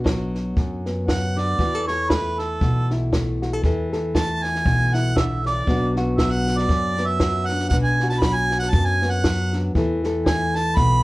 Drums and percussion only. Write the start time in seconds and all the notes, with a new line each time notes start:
0.06 kick, snare
0.35 snare
0.57 kick, snare
0.86 snare
1.08 kick, snare
1.38 snare
1.59 kick, snare
1.88 snare
2.10 kick, snare
2.39 snare
2.61 kick, snare
2.90 snare
3.13 kick, snare
3.42 snare
3.64 kick, snare
3.92 snare
4.15 kick, snare
4.44 snare
4.55 snare
4.66 kick, snare
4.94 snare
5.16 kick, snare
5.46 snare
5.67 kick, snare
5.96 snare
6.18 kick, snare
6.47 snare
6.58 snare
6.69 kick, snare
6.97 snare
7.20 kick, snare
7.49 snare
7.60 snare
7.71 kick, snare
8.00 snare
8.11 snare
8.22 kick, snare
8.51 snare
8.62 snare
8.72 kick, snare
9.02 snare
9.24 kick, snare
9.53 snare
9.75 kick, snare
10.04 snare
10.26 kick, snare
10.55 snare
10.76 kick, snare